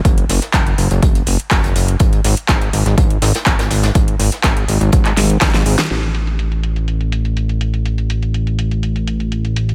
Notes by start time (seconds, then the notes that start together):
0.05 F#1, kick, closed hi-hat
0.18 closed hi-hat
0.29 F#1, snare, closed hi-hat, open hi-hat
0.42 snare, closed hi-hat
0.54 F#1, kick, snare, clap, closed hi-hat
0.67 closed hi-hat
0.78 F#1, closed hi-hat, open hi-hat
0.91 F#1, closed hi-hat
1.03 F#1, kick, closed hi-hat
1.15 closed hi-hat
1.26 F#1, closed hi-hat, open hi-hat
1.40 closed hi-hat
1.51 F#1, kick, snare, clap, closed hi-hat, open hi-hat
1.64 F#1, closed hi-hat
1.76 F#1, closed hi-hat, open hi-hat
1.88 closed hi-hat
1.99 G#1, kick, closed hi-hat
2.13 closed hi-hat
2.24 G#1, snare, closed hi-hat, open hi-hat
2.37 closed hi-hat
2.49 G#1, kick, snare, clap, closed hi-hat
2.61 closed hi-hat
2.73 G#1, closed hi-hat, open hi-hat
2.86 G#1, snare, closed hi-hat
2.98 G#1, kick, closed hi-hat
3.10 closed hi-hat
3.22 G#1, snare, closed hi-hat, open hi-hat
3.34 snare, closed hi-hat
3.46 G#1, kick, snare, clap, closed hi-hat
3.59 G#1, snare, closed hi-hat
3.70 G#1, snare, closed hi-hat, open hi-hat
3.83 snare, closed hi-hat
3.95 G#1, kick, closed hi-hat
4.08 closed hi-hat
4.19 G#1, snare, closed hi-hat, open hi-hat
4.32 snare, closed hi-hat
4.44 G#1, kick, snare, clap, closed hi-hat
4.57 closed hi-hat
4.68 G#1, closed hi-hat, open hi-hat
4.81 G#1, closed hi-hat
4.92 G#1, kick, closed hi-hat
5.05 clap, closed hi-hat
5.17 G#1, snare, closed hi-hat, open hi-hat
5.30 closed hi-hat
5.41 G#1, kick, snare, clap, closed hi-hat
5.54 G#1, snare, closed hi-hat
5.66 G#1, closed hi-hat, open hi-hat
5.78 snare, closed hi-hat
5.90 A1, closed hi-hat
6.03 closed hi-hat
6.15 closed hi-hat
6.27 closed hi-hat
6.39 closed hi-hat
6.52 closed hi-hat
6.63 closed hi-hat
6.76 closed hi-hat
6.88 closed hi-hat
7.01 closed hi-hat
7.12 closed hi-hat
7.25 closed hi-hat
7.37 closed hi-hat
7.49 closed hi-hat
7.61 closed hi-hat
7.74 closed hi-hat
7.86 closed hi-hat
7.98 closed hi-hat
8.10 closed hi-hat
8.23 closed hi-hat
8.34 closed hi-hat
8.47 closed hi-hat
8.59 closed hi-hat
8.71 closed hi-hat
8.83 closed hi-hat
8.96 closed hi-hat
9.07 closed hi-hat
9.20 closed hi-hat
9.32 closed hi-hat
9.45 closed hi-hat
9.56 closed hi-hat
9.69 closed hi-hat